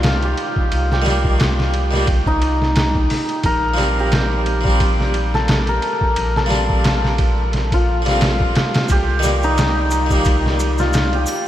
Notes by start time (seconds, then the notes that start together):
Already playing: C2 D#3 G3 A#3 D4 D#4 F4 G4
0.03 snare, ride
0.23 G4, ride
0.38 ride
0.56 kick
0.72 C2, ride
0.92 G4, snare
1.02 D#3 G3
1.06 A#3, snare, ride
1.10 D4
1.24 kick
1.40 snare, ride
1.60 snare
1.74 ride
1.91 D#3 G3 A#3, snare
1.95 D4
2.07 kick, ride
2.26 D#4, kick
2.42 ride
2.62 snare
2.76 snare, ride
2.95 kick
3.10 snare, open hi-hat
3.29 ride
3.43 A#1 A#4, kick, ride
3.74 F3 G3
3.78 C4, snare, ride
3.83 D4
3.99 G4
4.12 snare, ride
4.46 ride
4.61 F3 G3
4.65 C4, kick
4.70 D4
4.80 kick, ride
5.00 snare
5.14 ride
5.34 A4, snare
5.48 snare, ride
5.67 A#4, ride
5.82 ride
6.01 kick
6.16 A#1, ride
6.36 A4, snare
6.46 F3 G3
6.50 C4, snare, ride
6.55 D4
6.69 kick
6.84 snare, ride
7.05 snare
7.18 kick, ride
7.53 snare, ride
7.72 F4, kick, ride
8.02 F3 G3
8.06 C4, snare, ride
8.11 F4
8.21 snare, ride
8.40 kick
8.55 snare, ride
8.74 snare, ride
8.88 C2 G4, kick, ride, maracas
9.19 D#3 G3, maracas
9.24 A#3, snare, ride
9.28 D5
9.43 D#4, maracas
9.58 snare, ride, maracas
9.91 ride, maracas
10.06 D#3 G3
10.10 A#3, kick, maracas
10.15 D4
10.25 kick, ride, maracas
10.46 snare
10.59 ride, maracas
10.78 F4, snare, maracas
10.93 snare, ride, maracas
11.13 G4, ride
11.26 ride, triangle, maracas